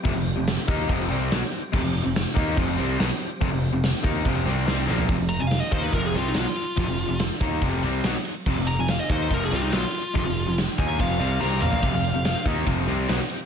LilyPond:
<<
  \new Staff \with { instrumentName = "Lead electric guitar" } { \time 4/4 \key c \phrygian \tempo 4 = 143 r1 | r1 | r1 | r8 bes''16 aes''16 f''16 ees''16 c''16 b'16 bes'16 aes'16 f'16 ees'16 f'4~ |
f'4 r2. | r8 bes''16 aes''16 f''16 ees''16 c''16 c''16 bes'16 aes'16 f'16 ees'16 f'4~ | f'4 r8 aes''8 f''4 bes''8 f''8~ | f''4. r2 r8 | }
  \new Staff \with { instrumentName = "Tonewheel organ" } { \time 4/4 \key c \phrygian <f c' g'>1~ | <f c' g'>1~ | <f c' g'>1 | r1 |
r1 | r1 | r1 | <f c' g'>1 | }
  \new Staff \with { instrumentName = "Distorted electric guitar" } { \clef bass \time 4/4 \key c \phrygian <f, c>16 <f, c>8 <f, c>8 r16 <ees bes ees'>8 <f, c f>8 <c g c'>8 <b, ges>16 r8. | <f, c>16 <f, c>8 <f, c>8 r16 <ees bes ees'>8 <f, c f>8 <c g c'>8 <b, ges>16 r8. | <f, c>16 <f, c>8 <f, c>8 r16 <ees bes ees'>8 <f, c f>8 <c g c'>8 <c g c'>8 <bes, f bes>8 | <f, c>16 <f, c>8 <f, c>8 r16 <ees bes ees'>8 <f, c f>8 <c g c'>8 <b, ges>16 r8. |
<f, c>16 <f, c>8 <f, c>8 r16 <ees bes ees'>8 <f, c f>8 <c g c'>8 <b, ges>16 r8. | <f, c>16 <f, c>8 <f, c>8 r16 <ees bes ees'>8 <f, c f>8 <c g c'>8 <b, ges>16 r8. | <f, c>16 <f, c>8 <f, c>8 r16 <ees bes ees'>8 <f, c f>8 <c g c'>8 <c g c'>8 <bes, f bes>8 | <f, c>16 <f, c>8 <f, c>8 r16 <ees bes ees'>8 <f, c f>8 <c g c'>8 <b, ges>16 r8. | }
  \new Staff \with { instrumentName = "Distorted electric guitar" } { \clef bass \time 4/4 \key c \phrygian <f, c>16 <f, c>8 <f, c>8 r16 <ees bes ees'>8 <f, c f>8 <c g c'>8 <b, ges>16 r8. | <f, c>16 <f, c>8 <f, c>8 r16 <ees bes ees'>8 <f, c f>8 <c g c'>8 <b, ges>16 r8. | <f, c>16 <f, c>8 <f, c>8 r16 <ees bes ees'>8 <f, c f>8 <c g c'>8 <c g c'>8 <bes, f bes>8 | <f, c>16 <f, c>8 <f, c>8 r16 <ees bes ees'>8 <f, c f>8 <c g c'>8 <b, ges>16 r8. |
<f, c>16 <f, c>8 <f, c>8 r16 <ees bes ees'>8 <f, c f>8 <c g c'>8 <b, ges>16 r8. | <f, c>16 <f, c>8 <f, c>8 r16 <ees bes ees'>8 <f, c f>8 <c g c'>8 <b, ges>16 r8. | <f, c>16 <f, c>8 <f, c>8 r16 <ees bes ees'>8 <f, c f>8 <c g c'>8 <c g c'>8 <bes, f bes>8 | <f, c>16 <f, c>8 <f, c>8 r16 <ees bes ees'>8 <f, c f>8 <c g c'>8 <b, ges>16 r8. | }
  \new Staff \with { instrumentName = "Picked electric bass" } { \clef bass \time 4/4 \key c \phrygian f,,16 f,,8 f,,8 r16 ees,8 f,,8 c,8 b,,16 r8. | f,,16 f,,8 f,,8 r16 ees,8 f,,8 c,8 b,,16 r8. | f,,16 f,,8 f,,8 r16 ees,8 f,,8 c,8 c,8 bes,,8 | f,,16 f,,8 f,,8 r16 ees,8 f,,8 c,8 b,,16 r8. |
f,,16 f,,8 f,,8 r16 ees,8 f,,8 c,8 b,,16 r8. | f,,16 f,,8 f,,8 r16 ees,8 f,,8 c,8 b,,16 r8. | f,,16 f,,8 f,,8 r16 ees,8 f,,8 c,8 c,8 bes,,8 | f,,16 f,,8 f,,8 r16 ees,8 f,,8 c,8 b,,16 r8. | }
  \new DrumStaff \with { instrumentName = "Drums" } \drummode { \time 4/4 <hho bd>8 hho8 <hho sn>8 <hho bd>8 <hho bd>8 hho8 sn8 hho8 | <cymc bd>8 hho8 <hho sn>8 <hho bd>8 <hho bd>8 hho8 <hho sn>8 hho8 | <hho bd>8 hho8 <hho sn>8 <hho bd>8 <hho bd>8 hho8 <hho sn>8 sn16 tomfh16 | <bd cymr>8 cymr8 <cymr sn>8 <bd cymr>8 <bd cymr>8 cymr8 <cymr sn>8 cymr8 |
<bd cymr>8 cymr8 <cymr sn>8 <bd cymr>8 <bd cymr>8 cymr8 <cymr sn>8 cymr8 | <cymc bd>8 cymr8 <cymr sn>8 <bd cymr>8 <bd cymr>8 cymr8 <cymr sn>8 cymr8 | <bd cymr>8 cymr8 <cymr sn>8 <bd cymr>8 <bd cymr>8 cymr8 sn8 toml16 tomfh16 | <cymc bd>8 cymr8 <cymr sn>8 <bd cymr>8 <bd cymr>8 cymr8 <cymr sn>8 cymr8 | }
>>